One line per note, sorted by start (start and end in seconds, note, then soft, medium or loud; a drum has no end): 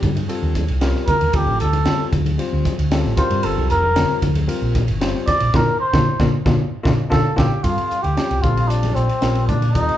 0.00 0.27 G2 medium
0.00 0.11 G3 medium
0.00 0.11 C4 medium
0.00 0.11 F4 medium
0.00 0.11 G4 medium
0.00 kick medium
0.00 hi-hat pedal medium
0.00 ride medium
0.00 high conga medium
0.00 low conga medium
0.16 ride medium
0.16 high conga medium
0.28 0.64 G3 medium
0.28 0.64 C4 medium
0.28 0.64 F4 medium
0.28 0.64 A4 medium
0.28 ride medium
0.42 0.67 D#2 loud
0.55 kick medium
0.55 snare soft
0.55 hi-hat pedal medium
0.55 ride medium
0.55 high conga medium
0.68 0.93 C2 medium
0.68 ride medium
0.81 1.16 G3 medium
0.81 1.16 C4 medium
0.81 1.16 F4 medium
0.81 1.17 A#4 medium
0.81 snare loud
0.81 ride medium
0.95 snare soft
1.07 1.37 A#4 medium
1.07 kick medium
1.07 hi-hat pedal medium
1.07 ride medium
1.07 low conga medium
1.21 1.33 D#2 medium
1.21 ride medium
1.33 1.46 D2 loud
1.33 1.69 G3 medium
1.33 1.69 C4 medium
1.33 1.69 F4 medium
1.33 1.60 G4 medium
1.33 1.69 A4 medium
1.33 kick loud
1.33 ride medium
1.47 1.60 A1 medium
1.47 high conga medium
1.60 1.85 D2 medium
1.60 2.09 A4 medium
1.60 hi-hat pedal medium
1.60 ride medium
1.73 ride medium
1.73 high conga medium
1.85 2.21 G3 medium
1.85 2.21 C4 medium
1.85 2.22 F4 medium
1.85 2.22 A4 medium
1.85 snare loud
1.85 ride medium
1.85 low conga medium
2.13 2.37 D2 medium
2.13 kick medium
2.13 hi-hat pedal medium
2.13 ride medium
2.13 high conga medium
2.13 low conga medium
2.26 ride medium
2.26 high conga medium
2.38 2.73 G3 medium
2.38 2.74 C4 medium
2.38 2.74 F4 medium
2.38 2.74 C5 medium
2.38 ride medium
2.53 2.65 D2 medium
2.65 kick medium
2.65 snare soft
2.65 hi-hat pedal medium
2.65 ride medium
2.65 high conga medium
2.78 3.03 D2 medium
2.78 ride medium
2.91 3.16 G3 medium
2.91 3.16 C4 medium
2.91 3.17 F4 medium
2.91 3.18 A4 medium
2.91 snare loud
2.91 ride medium
3.05 3.17 A1 medium
3.05 snare soft
3.17 3.81 G3 medium
3.17 3.81 C4 medium
3.17 3.81 F4 medium
3.17 3.81 A#4 medium
3.17 3.46 C5 medium
3.17 muted fingered electric bass stroke soft
3.17 kick loud
3.17 snare soft
3.17 hi-hat pedal medium
3.17 ride medium
3.17 low conga medium
3.30 3.43 G2 medium
3.30 ride medium
3.43 3.57 G1 medium
3.43 3.70 A4 medium
3.43 ride medium
3.57 3.72 C2 medium
3.57 high conga medium
3.70 4.07 F1 medium
3.70 4.19 A#4 medium
3.70 hi-hat pedal medium
3.70 ride medium
3.83 high conga medium
3.96 4.31 G3 medium
3.96 4.31 C4 medium
3.96 4.31 F4 medium
3.96 4.32 A#4 medium
3.96 snare loud
3.96 ride medium
3.96 low conga medium
4.09 muted fingered electric bass stroke soft
4.22 4.47 D2 medium
4.22 kick medium
4.22 hi-hat pedal medium
4.22 ride medium
4.22 high conga medium
4.22 low conga medium
4.35 ride medium
4.35 high conga medium
4.47 4.83 G3 medium
4.47 4.83 C4 medium
4.47 4.83 F4 medium
4.47 4.84 A#4 medium
4.47 ride medium
4.62 4.87 A#1 medium
4.75 kick medium
4.75 snare soft
4.75 hi-hat pedal medium
4.75 ride medium
4.75 high conga medium
4.88 5.13 G1 medium
4.88 ride medium
5.01 5.36 G3 medium
5.01 5.36 C4 medium
5.01 5.36 F4 medium
5.01 5.37 C5 loud
5.01 snare loud
5.01 ride medium
5.15 snare soft
5.27 5.57 D5 loud
5.27 kick medium
5.27 snare soft
5.27 hi-hat pedal medium
5.27 ride medium
5.27 low conga medium
5.40 5.53 A#1 medium
5.40 ride medium
5.54 5.64 A#1 medium
5.54 5.63 A#3 medium
5.54 5.63 D4 medium
5.54 5.63 F4 medium
5.54 5.80 A#4 medium
5.54 kick loud
5.54 snare medium
5.54 low conga medium
5.80 6.29 C5 medium
5.93 6.03 A#1 loud
5.93 6.02 A#3 medium
5.93 6.02 D4 medium
5.93 6.02 F4 medium
5.93 kick medium
5.93 snare medium
5.93 low conga loud
6.20 6.29 A#1 loud
6.20 6.28 A#3 loud
6.20 6.28 D4 loud
6.20 6.28 F4 loud
6.20 kick medium
6.20 snare medium
6.20 low conga loud
6.46 6.56 A#1 medium
6.46 6.54 A#3 medium
6.46 6.54 D4 medium
6.46 6.54 F4 loud
6.46 kick loud
6.46 snare medium
6.46 low conga loud
6.83 6.95 A#1 loud
6.83 6.93 A#3 loud
6.83 6.93 D4 medium
6.83 6.93 F4 loud
6.83 kick medium
6.83 snare medium
6.83 low conga loud
7.10 7.22 A#1 medium
7.10 7.19 A#3 loud
7.10 7.19 D4 medium
7.10 7.19 F4 medium
7.10 7.36 A4 loud
7.10 7.37 A5 medium
7.10 kick medium
7.10 snare medium
7.10 low conga loud
7.36 7.48 A#1 medium
7.36 7.46 A#3 loud
7.36 7.46 D4 loud
7.36 7.45 F4 loud
7.36 7.65 G4 medium
7.36 7.65 G5 medium
7.36 kick loud
7.36 snare loud
7.36 low conga medium
7.63 7.77 G2 medium
7.63 7.99 G3 medium
7.63 7.99 C4 medium
7.63 8.04 F4 medium
7.63 7.99 F4 medium
7.63 8.00 A4 medium
7.63 8.06 F5 medium
7.63 kick medium
7.63 hi-hat pedal medium
7.63 ride medium
7.78 ride medium
7.91 muted fingered electric bass stroke soft
7.91 hi-hat pedal medium
8.02 8.16 D2 medium
8.02 8.43 G4 medium
8.02 8.45 G5 medium
8.02 ride medium
8.02 high conga medium
8.16 8.42 G3 medium
8.16 8.42 C4 medium
8.16 8.43 F4 medium
8.16 8.43 G4 medium
8.16 snare medium
8.16 hi-hat pedal medium
8.16 ride medium
8.31 8.43 C2 medium
8.31 ride medium
8.42 8.92 A#1 medium
8.42 9.07 G3 medium
8.42 9.07 C4 medium
8.42 8.69 F4 medium
8.42 9.07 F4 medium
8.42 9.07 A4 medium
8.42 8.71 F5 medium
8.42 kick medium
8.42 hi-hat pedal medium
8.42 low conga medium
8.57 ride medium
8.68 8.96 D4 medium
8.68 8.96 D5 medium
8.68 hi-hat pedal medium
8.68 ride medium
8.83 snare soft
8.83 ride medium
8.83 high conga medium
8.95 9.08 A#1 medium
8.95 9.47 C4 medium
8.95 9.46 C5 medium
8.95 hi-hat pedal medium
9.09 ride medium
9.21 9.50 A#1 medium
9.21 9.57 G3 medium
9.21 9.57 C4 medium
9.21 9.57 F4 medium
9.21 9.57 A#4 medium
9.21 snare medium
9.21 hi-hat pedal medium
9.21 ride medium
9.35 ride medium
9.47 9.77 A#2 medium
9.47 9.71 D4 medium
9.47 9.72 D5 medium
9.47 kick medium
9.47 hi-hat pedal medium
9.47 low conga medium
9.62 ride medium
9.62 high conga medium
9.72 9.88 D#2 loud
9.72 9.97 G3 medium
9.72 9.97 C4 medium
9.72 9.97 D#4 medium
9.72 9.97 F4 medium
9.72 9.97 A4 medium
9.72 9.97 D#5 medium
9.72 kick loud
9.72 hi-hat pedal medium
9.72 ride medium
9.89 ride medium